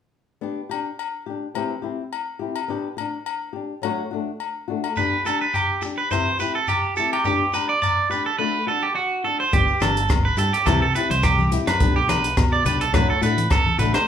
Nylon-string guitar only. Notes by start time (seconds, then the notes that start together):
0.41 B3 D4 G4
0.69 D4 G4
1.26 D4 G4
1.55 E3 C4 E4 G4
1.82 C4 E4 G4
2.39 C4 E4 G4
2.68 B3 D4 G4
2.97 D4, muted nylon-string guitar stroke
3.53 D4 G4
3.82 F#3 A3 D4 F#4
4.11 A3 D4 F#4
4.68 A3 D4 F#4
4.97 B3 D4 G4
5.25 D4 G4
5.82 D4 G4
6.11 E3 C4 E4 G4
6.39 C4 E4 G4
6.97 C4 E4 G4
7.25 B3 D4 G4
7.53 D4 G4
8.10 D4 G4
8.39 A3 D4 F#4
8.67 D4 F#4
9.24 D4 F#4
9.53 B3 D4 G4
9.81 D4 G4
10.38 G4, muted nylon-string guitar stroke
10.66 E3 C4 E4 G4
10.95 C4 E4 G4
11.52 C4 E4 G4
11.80 B3 D4 G4
12.07 D4 G4
12.64 D4 G4
12.93 F#3 A3 D4 F#4
13.21 A3 D4 F#4
13.78 A3 D4 F#4